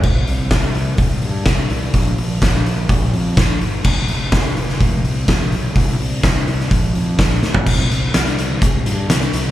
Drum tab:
CC |x---------------|----------------|x---------------|----------------|
HH |--o-o-o-o-o-o-o-|o-o-o-o-o-o-o-o-|--o-o-o-o-o-o-o-|o-o-o-o-o-o-o---|
SD |----o-------o---|----o-------o---|----o--o----o---|----o--o----o-o-|
FT |----------------|----------------|----------------|---------------o|
BD |o---o---o---o---|o---o---o---o---|o---o---o---o---|o---o---o---o---|

CC |x---------------|
HH |--x-xxx-x-x-xxx-|
SD |----oo------o---|
FT |----------------|
BD |o-------o-------|